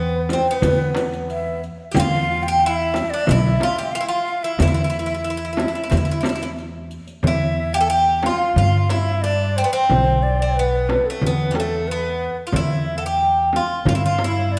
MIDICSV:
0, 0, Header, 1, 7, 480
1, 0, Start_track
1, 0, Tempo, 661521
1, 1413, Time_signature, 4, 2, 24, 8
1, 10587, End_track
2, 0, Start_track
2, 0, Title_t, "Ney"
2, 0, Program_c, 0, 77
2, 0, Note_on_c, 0, 71, 75
2, 221, Note_on_c, 0, 72, 70
2, 232, Note_off_c, 0, 71, 0
2, 354, Note_on_c, 0, 71, 77
2, 365, Note_off_c, 0, 72, 0
2, 747, Note_off_c, 0, 71, 0
2, 945, Note_on_c, 0, 76, 70
2, 1163, Note_off_c, 0, 76, 0
2, 1414, Note_on_c, 0, 79, 83
2, 1445, Note_on_c, 0, 77, 90
2, 1452, Note_off_c, 0, 79, 0
2, 1763, Note_on_c, 0, 79, 84
2, 1774, Note_off_c, 0, 77, 0
2, 1887, Note_on_c, 0, 76, 77
2, 1897, Note_off_c, 0, 79, 0
2, 2249, Note_on_c, 0, 74, 69
2, 2260, Note_off_c, 0, 76, 0
2, 2371, Note_on_c, 0, 76, 68
2, 2382, Note_off_c, 0, 74, 0
2, 2842, Note_on_c, 0, 77, 79
2, 2853, Note_off_c, 0, 76, 0
2, 2950, Note_off_c, 0, 77, 0
2, 2958, Note_on_c, 0, 79, 68
2, 2983, Note_on_c, 0, 77, 74
2, 2990, Note_off_c, 0, 79, 0
2, 3214, Note_on_c, 0, 76, 66
2, 3224, Note_off_c, 0, 77, 0
2, 3334, Note_off_c, 0, 76, 0
2, 3338, Note_on_c, 0, 76, 78
2, 4747, Note_off_c, 0, 76, 0
2, 5255, Note_on_c, 0, 76, 74
2, 5612, Note_on_c, 0, 79, 72
2, 5623, Note_off_c, 0, 76, 0
2, 5706, Note_off_c, 0, 79, 0
2, 5710, Note_on_c, 0, 81, 66
2, 5738, Note_on_c, 0, 79, 72
2, 5746, Note_off_c, 0, 81, 0
2, 5978, Note_on_c, 0, 77, 77
2, 5988, Note_off_c, 0, 79, 0
2, 6209, Note_off_c, 0, 77, 0
2, 6213, Note_on_c, 0, 77, 70
2, 6457, Note_on_c, 0, 76, 70
2, 6468, Note_off_c, 0, 77, 0
2, 6692, Note_on_c, 0, 74, 70
2, 6702, Note_off_c, 0, 76, 0
2, 6942, Note_on_c, 0, 72, 63
2, 6953, Note_off_c, 0, 74, 0
2, 7041, Note_off_c, 0, 72, 0
2, 7051, Note_on_c, 0, 72, 73
2, 7421, Note_on_c, 0, 74, 67
2, 7432, Note_off_c, 0, 72, 0
2, 7665, Note_on_c, 0, 71, 62
2, 7676, Note_off_c, 0, 74, 0
2, 8025, Note_on_c, 0, 69, 55
2, 8036, Note_off_c, 0, 71, 0
2, 8141, Note_off_c, 0, 69, 0
2, 8149, Note_on_c, 0, 71, 62
2, 8385, Note_on_c, 0, 69, 62
2, 8396, Note_off_c, 0, 71, 0
2, 8620, Note_on_c, 0, 71, 66
2, 8631, Note_off_c, 0, 69, 0
2, 8979, Note_off_c, 0, 71, 0
2, 9103, Note_on_c, 0, 76, 76
2, 9459, Note_on_c, 0, 79, 67
2, 9470, Note_off_c, 0, 76, 0
2, 9819, Note_off_c, 0, 79, 0
2, 10055, Note_on_c, 0, 77, 64
2, 10151, Note_off_c, 0, 77, 0
2, 10157, Note_on_c, 0, 77, 70
2, 10534, Note_on_c, 0, 74, 68
2, 10544, Note_off_c, 0, 77, 0
2, 10587, Note_off_c, 0, 74, 0
2, 10587, End_track
3, 0, Start_track
3, 0, Title_t, "Bouzouki"
3, 0, Program_c, 1, 25
3, 0, Note_on_c, 1, 59, 78
3, 233, Note_off_c, 1, 59, 0
3, 240, Note_on_c, 1, 60, 76
3, 339, Note_off_c, 1, 60, 0
3, 368, Note_on_c, 1, 59, 74
3, 1162, Note_off_c, 1, 59, 0
3, 1389, Note_on_c, 1, 67, 61
3, 1427, Note_off_c, 1, 67, 0
3, 1448, Note_on_c, 1, 65, 88
3, 1797, Note_off_c, 1, 65, 0
3, 1800, Note_on_c, 1, 67, 91
3, 1910, Note_off_c, 1, 67, 0
3, 1931, Note_on_c, 1, 64, 90
3, 2272, Note_off_c, 1, 64, 0
3, 2275, Note_on_c, 1, 62, 79
3, 2388, Note_off_c, 1, 62, 0
3, 2400, Note_on_c, 1, 64, 90
3, 2632, Note_off_c, 1, 64, 0
3, 2635, Note_on_c, 1, 65, 84
3, 2743, Note_off_c, 1, 65, 0
3, 2746, Note_on_c, 1, 67, 76
3, 2863, Note_off_c, 1, 67, 0
3, 2867, Note_on_c, 1, 65, 82
3, 2904, Note_off_c, 1, 65, 0
3, 2907, Note_on_c, 1, 64, 66
3, 2957, Note_off_c, 1, 64, 0
3, 2964, Note_on_c, 1, 65, 81
3, 3221, Note_off_c, 1, 65, 0
3, 3224, Note_on_c, 1, 64, 69
3, 3342, Note_off_c, 1, 64, 0
3, 3353, Note_on_c, 1, 64, 81
3, 3383, Note_off_c, 1, 64, 0
3, 3392, Note_on_c, 1, 64, 51
3, 3433, Note_off_c, 1, 64, 0
3, 3442, Note_on_c, 1, 64, 59
3, 3493, Note_off_c, 1, 64, 0
3, 3514, Note_on_c, 1, 64, 54
3, 3544, Note_off_c, 1, 64, 0
3, 3553, Note_on_c, 1, 64, 55
3, 3604, Note_off_c, 1, 64, 0
3, 3622, Note_on_c, 1, 64, 52
3, 3664, Note_off_c, 1, 64, 0
3, 3672, Note_on_c, 1, 64, 56
3, 3718, Note_off_c, 1, 64, 0
3, 3732, Note_on_c, 1, 64, 48
3, 3776, Note_off_c, 1, 64, 0
3, 3805, Note_on_c, 1, 64, 57
3, 3838, Note_off_c, 1, 64, 0
3, 3847, Note_on_c, 1, 64, 52
3, 3888, Note_off_c, 1, 64, 0
3, 3898, Note_on_c, 1, 64, 56
3, 3941, Note_off_c, 1, 64, 0
3, 3952, Note_on_c, 1, 64, 47
3, 3995, Note_off_c, 1, 64, 0
3, 4011, Note_on_c, 1, 64, 49
3, 4052, Note_off_c, 1, 64, 0
3, 4060, Note_on_c, 1, 64, 47
3, 4103, Note_off_c, 1, 64, 0
3, 4122, Note_on_c, 1, 64, 56
3, 4162, Note_off_c, 1, 64, 0
3, 4174, Note_on_c, 1, 64, 49
3, 4215, Note_off_c, 1, 64, 0
3, 4234, Note_on_c, 1, 64, 55
3, 4269, Note_off_c, 1, 64, 0
3, 4278, Note_on_c, 1, 64, 51
3, 4322, Note_off_c, 1, 64, 0
3, 4332, Note_on_c, 1, 64, 54
3, 4376, Note_off_c, 1, 64, 0
3, 4391, Note_on_c, 1, 64, 47
3, 4427, Note_off_c, 1, 64, 0
3, 4436, Note_on_c, 1, 64, 61
3, 4482, Note_off_c, 1, 64, 0
3, 4503, Note_on_c, 1, 64, 52
3, 4544, Note_off_c, 1, 64, 0
3, 4564, Note_on_c, 1, 64, 58
3, 4602, Note_off_c, 1, 64, 0
3, 4611, Note_on_c, 1, 64, 50
3, 4652, Note_off_c, 1, 64, 0
3, 4663, Note_on_c, 1, 64, 62
3, 4705, Note_off_c, 1, 64, 0
3, 5276, Note_on_c, 1, 64, 89
3, 5617, Note_on_c, 1, 67, 90
3, 5636, Note_off_c, 1, 64, 0
3, 5661, Note_off_c, 1, 67, 0
3, 5664, Note_on_c, 1, 69, 74
3, 5716, Note_off_c, 1, 69, 0
3, 5731, Note_on_c, 1, 67, 87
3, 5990, Note_off_c, 1, 67, 0
3, 5994, Note_on_c, 1, 65, 78
3, 6209, Note_off_c, 1, 65, 0
3, 6225, Note_on_c, 1, 65, 85
3, 6456, Note_off_c, 1, 65, 0
3, 6459, Note_on_c, 1, 64, 83
3, 6700, Note_off_c, 1, 64, 0
3, 6703, Note_on_c, 1, 62, 77
3, 6947, Note_off_c, 1, 62, 0
3, 6950, Note_on_c, 1, 60, 92
3, 6992, Note_off_c, 1, 60, 0
3, 6995, Note_on_c, 1, 59, 78
3, 7042, Note_off_c, 1, 59, 0
3, 7059, Note_on_c, 1, 60, 94
3, 7552, Note_off_c, 1, 60, 0
3, 7561, Note_on_c, 1, 60, 68
3, 7672, Note_off_c, 1, 60, 0
3, 7685, Note_on_c, 1, 59, 77
3, 8042, Note_off_c, 1, 59, 0
3, 8054, Note_on_c, 1, 57, 75
3, 8159, Note_off_c, 1, 57, 0
3, 8174, Note_on_c, 1, 59, 86
3, 8350, Note_off_c, 1, 59, 0
3, 8351, Note_on_c, 1, 55, 58
3, 8389, Note_off_c, 1, 55, 0
3, 8415, Note_on_c, 1, 57, 72
3, 8642, Note_off_c, 1, 57, 0
3, 8644, Note_on_c, 1, 59, 78
3, 8967, Note_off_c, 1, 59, 0
3, 9046, Note_on_c, 1, 65, 63
3, 9098, Note_off_c, 1, 65, 0
3, 9114, Note_on_c, 1, 64, 90
3, 9413, Note_off_c, 1, 64, 0
3, 9416, Note_on_c, 1, 69, 68
3, 9462, Note_off_c, 1, 69, 0
3, 9476, Note_on_c, 1, 67, 82
3, 9836, Note_off_c, 1, 67, 0
3, 9839, Note_on_c, 1, 65, 77
3, 10067, Note_off_c, 1, 65, 0
3, 10076, Note_on_c, 1, 65, 90
3, 10119, Note_off_c, 1, 65, 0
3, 10122, Note_on_c, 1, 64, 71
3, 10167, Note_off_c, 1, 64, 0
3, 10199, Note_on_c, 1, 65, 77
3, 10321, Note_off_c, 1, 65, 0
3, 10335, Note_on_c, 1, 64, 84
3, 10563, Note_off_c, 1, 64, 0
3, 10587, End_track
4, 0, Start_track
4, 0, Title_t, "Upright bass"
4, 0, Program_c, 2, 32
4, 0, Note_on_c, 2, 40, 95
4, 248, Note_off_c, 2, 40, 0
4, 455, Note_on_c, 2, 40, 80
4, 1218, Note_off_c, 2, 40, 0
4, 1417, Note_on_c, 2, 40, 89
4, 2179, Note_off_c, 2, 40, 0
4, 2385, Note_on_c, 2, 35, 94
4, 2572, Note_off_c, 2, 35, 0
4, 3335, Note_on_c, 2, 40, 84
4, 4098, Note_off_c, 2, 40, 0
4, 4296, Note_on_c, 2, 40, 77
4, 5059, Note_off_c, 2, 40, 0
4, 5251, Note_on_c, 2, 40, 84
4, 6016, Note_off_c, 2, 40, 0
4, 6213, Note_on_c, 2, 43, 75
4, 6978, Note_off_c, 2, 43, 0
4, 7188, Note_on_c, 2, 35, 75
4, 7947, Note_off_c, 2, 35, 0
4, 8140, Note_on_c, 2, 40, 75
4, 8903, Note_off_c, 2, 40, 0
4, 9101, Note_on_c, 2, 40, 80
4, 9863, Note_off_c, 2, 40, 0
4, 10058, Note_on_c, 2, 43, 79
4, 10587, Note_off_c, 2, 43, 0
4, 10587, End_track
5, 0, Start_track
5, 0, Title_t, "Darbuka"
5, 450, Note_on_c, 9, 64, 74
5, 523, Note_off_c, 9, 64, 0
5, 571, Note_on_c, 9, 62, 27
5, 644, Note_off_c, 9, 62, 0
5, 686, Note_on_c, 9, 63, 70
5, 759, Note_off_c, 9, 63, 0
5, 813, Note_on_c, 9, 62, 27
5, 885, Note_off_c, 9, 62, 0
5, 1289, Note_on_c, 9, 62, 22
5, 1361, Note_off_c, 9, 62, 0
5, 1415, Note_on_c, 9, 64, 76
5, 1488, Note_off_c, 9, 64, 0
5, 1537, Note_on_c, 9, 62, 21
5, 1609, Note_off_c, 9, 62, 0
5, 1905, Note_on_c, 9, 62, 21
5, 1978, Note_off_c, 9, 62, 0
5, 2132, Note_on_c, 9, 63, 65
5, 2205, Note_off_c, 9, 63, 0
5, 2376, Note_on_c, 9, 64, 68
5, 2449, Note_off_c, 9, 64, 0
5, 2504, Note_on_c, 9, 62, 27
5, 2576, Note_off_c, 9, 62, 0
5, 2620, Note_on_c, 9, 63, 59
5, 2692, Note_off_c, 9, 63, 0
5, 2742, Note_on_c, 9, 62, 26
5, 2814, Note_off_c, 9, 62, 0
5, 3221, Note_on_c, 9, 62, 23
5, 3293, Note_off_c, 9, 62, 0
5, 3339, Note_on_c, 9, 64, 72
5, 3411, Note_off_c, 9, 64, 0
5, 3584, Note_on_c, 9, 62, 27
5, 3656, Note_off_c, 9, 62, 0
5, 3699, Note_on_c, 9, 62, 27
5, 3771, Note_off_c, 9, 62, 0
5, 3818, Note_on_c, 9, 62, 25
5, 3890, Note_off_c, 9, 62, 0
5, 4051, Note_on_c, 9, 63, 60
5, 4123, Note_off_c, 9, 63, 0
5, 4290, Note_on_c, 9, 64, 74
5, 4363, Note_off_c, 9, 64, 0
5, 4412, Note_on_c, 9, 62, 29
5, 4485, Note_off_c, 9, 62, 0
5, 4531, Note_on_c, 9, 63, 69
5, 4603, Note_off_c, 9, 63, 0
5, 4655, Note_on_c, 9, 62, 29
5, 4727, Note_off_c, 9, 62, 0
5, 4777, Note_on_c, 9, 62, 28
5, 4849, Note_off_c, 9, 62, 0
5, 5132, Note_on_c, 9, 62, 26
5, 5204, Note_off_c, 9, 62, 0
5, 5253, Note_on_c, 9, 64, 85
5, 5325, Note_off_c, 9, 64, 0
5, 5491, Note_on_c, 9, 62, 24
5, 5563, Note_off_c, 9, 62, 0
5, 5606, Note_on_c, 9, 62, 21
5, 5678, Note_off_c, 9, 62, 0
5, 5969, Note_on_c, 9, 63, 66
5, 6042, Note_off_c, 9, 63, 0
5, 6214, Note_on_c, 9, 64, 65
5, 6287, Note_off_c, 9, 64, 0
5, 6331, Note_on_c, 9, 62, 22
5, 6404, Note_off_c, 9, 62, 0
5, 6454, Note_on_c, 9, 63, 58
5, 6527, Note_off_c, 9, 63, 0
5, 6577, Note_on_c, 9, 62, 25
5, 6650, Note_off_c, 9, 62, 0
5, 6703, Note_on_c, 9, 62, 24
5, 6775, Note_off_c, 9, 62, 0
5, 7066, Note_on_c, 9, 62, 22
5, 7139, Note_off_c, 9, 62, 0
5, 7186, Note_on_c, 9, 64, 66
5, 7259, Note_off_c, 9, 64, 0
5, 7425, Note_on_c, 9, 62, 25
5, 7498, Note_off_c, 9, 62, 0
5, 7906, Note_on_c, 9, 63, 67
5, 7979, Note_off_c, 9, 63, 0
5, 8141, Note_on_c, 9, 64, 65
5, 8214, Note_off_c, 9, 64, 0
5, 8264, Note_on_c, 9, 62, 22
5, 8337, Note_off_c, 9, 62, 0
5, 8381, Note_on_c, 9, 63, 65
5, 8453, Note_off_c, 9, 63, 0
5, 8500, Note_on_c, 9, 62, 26
5, 8573, Note_off_c, 9, 62, 0
5, 8617, Note_on_c, 9, 62, 25
5, 8690, Note_off_c, 9, 62, 0
5, 8862, Note_on_c, 9, 62, 21
5, 8935, Note_off_c, 9, 62, 0
5, 8976, Note_on_c, 9, 62, 23
5, 9049, Note_off_c, 9, 62, 0
5, 9094, Note_on_c, 9, 64, 91
5, 9166, Note_off_c, 9, 64, 0
5, 9332, Note_on_c, 9, 62, 23
5, 9405, Note_off_c, 9, 62, 0
5, 9451, Note_on_c, 9, 62, 24
5, 9523, Note_off_c, 9, 62, 0
5, 10052, Note_on_c, 9, 64, 73
5, 10125, Note_off_c, 9, 64, 0
5, 10177, Note_on_c, 9, 62, 27
5, 10249, Note_off_c, 9, 62, 0
5, 10294, Note_on_c, 9, 63, 65
5, 10366, Note_off_c, 9, 63, 0
5, 10414, Note_on_c, 9, 62, 29
5, 10486, Note_off_c, 9, 62, 0
5, 10535, Note_on_c, 9, 62, 28
5, 10587, Note_off_c, 9, 62, 0
5, 10587, End_track
6, 0, Start_track
6, 0, Title_t, "Frame drum"
6, 212, Note_on_c, 9, 64, 65
6, 284, Note_off_c, 9, 64, 0
6, 450, Note_on_c, 9, 64, 82
6, 522, Note_off_c, 9, 64, 0
6, 694, Note_on_c, 9, 64, 59
6, 767, Note_off_c, 9, 64, 0
6, 1410, Note_on_c, 9, 64, 98
6, 1483, Note_off_c, 9, 64, 0
6, 2133, Note_on_c, 9, 64, 59
6, 2205, Note_off_c, 9, 64, 0
6, 2373, Note_on_c, 9, 64, 82
6, 2445, Note_off_c, 9, 64, 0
6, 2612, Note_on_c, 9, 64, 58
6, 2685, Note_off_c, 9, 64, 0
6, 3328, Note_on_c, 9, 64, 84
6, 3400, Note_off_c, 9, 64, 0
6, 4042, Note_on_c, 9, 64, 72
6, 4114, Note_off_c, 9, 64, 0
6, 4288, Note_on_c, 9, 64, 73
6, 4360, Note_off_c, 9, 64, 0
6, 4521, Note_on_c, 9, 64, 72
6, 4594, Note_off_c, 9, 64, 0
6, 5245, Note_on_c, 9, 64, 76
6, 5317, Note_off_c, 9, 64, 0
6, 5973, Note_on_c, 9, 64, 65
6, 6046, Note_off_c, 9, 64, 0
6, 6210, Note_on_c, 9, 64, 70
6, 6283, Note_off_c, 9, 64, 0
6, 6460, Note_on_c, 9, 64, 57
6, 6533, Note_off_c, 9, 64, 0
6, 7180, Note_on_c, 9, 64, 71
6, 7252, Note_off_c, 9, 64, 0
6, 7901, Note_on_c, 9, 64, 60
6, 7973, Note_off_c, 9, 64, 0
6, 8136, Note_on_c, 9, 64, 71
6, 8209, Note_off_c, 9, 64, 0
6, 8372, Note_on_c, 9, 64, 58
6, 8445, Note_off_c, 9, 64, 0
6, 9087, Note_on_c, 9, 64, 76
6, 9160, Note_off_c, 9, 64, 0
6, 9815, Note_on_c, 9, 64, 60
6, 9888, Note_off_c, 9, 64, 0
6, 10058, Note_on_c, 9, 64, 83
6, 10131, Note_off_c, 9, 64, 0
6, 10291, Note_on_c, 9, 64, 58
6, 10364, Note_off_c, 9, 64, 0
6, 10587, End_track
7, 0, Start_track
7, 0, Title_t, "Riq"
7, 218, Note_on_c, 9, 54, 45
7, 290, Note_off_c, 9, 54, 0
7, 458, Note_on_c, 9, 54, 65
7, 531, Note_off_c, 9, 54, 0
7, 701, Note_on_c, 9, 54, 48
7, 773, Note_off_c, 9, 54, 0
7, 824, Note_on_c, 9, 54, 19
7, 896, Note_off_c, 9, 54, 0
7, 942, Note_on_c, 9, 54, 18
7, 1014, Note_off_c, 9, 54, 0
7, 1186, Note_on_c, 9, 54, 17
7, 1259, Note_off_c, 9, 54, 0
7, 1427, Note_on_c, 9, 54, 62
7, 1499, Note_off_c, 9, 54, 0
7, 2147, Note_on_c, 9, 54, 45
7, 2219, Note_off_c, 9, 54, 0
7, 2387, Note_on_c, 9, 54, 57
7, 2459, Note_off_c, 9, 54, 0
7, 2749, Note_on_c, 9, 54, 17
7, 2821, Note_off_c, 9, 54, 0
7, 2866, Note_on_c, 9, 54, 17
7, 2938, Note_off_c, 9, 54, 0
7, 3103, Note_on_c, 9, 54, 16
7, 3176, Note_off_c, 9, 54, 0
7, 3336, Note_on_c, 9, 54, 57
7, 3408, Note_off_c, 9, 54, 0
7, 3459, Note_on_c, 9, 54, 16
7, 3531, Note_off_c, 9, 54, 0
7, 3579, Note_on_c, 9, 54, 20
7, 3652, Note_off_c, 9, 54, 0
7, 3698, Note_on_c, 9, 54, 19
7, 3771, Note_off_c, 9, 54, 0
7, 3812, Note_on_c, 9, 54, 17
7, 3885, Note_off_c, 9, 54, 0
7, 4294, Note_on_c, 9, 54, 56
7, 4367, Note_off_c, 9, 54, 0
7, 4539, Note_on_c, 9, 54, 49
7, 4611, Note_off_c, 9, 54, 0
7, 4657, Note_on_c, 9, 54, 19
7, 4729, Note_off_c, 9, 54, 0
7, 4778, Note_on_c, 9, 54, 18
7, 4850, Note_off_c, 9, 54, 0
7, 5013, Note_on_c, 9, 54, 19
7, 5085, Note_off_c, 9, 54, 0
7, 5134, Note_on_c, 9, 54, 21
7, 5206, Note_off_c, 9, 54, 0
7, 10587, End_track
0, 0, End_of_file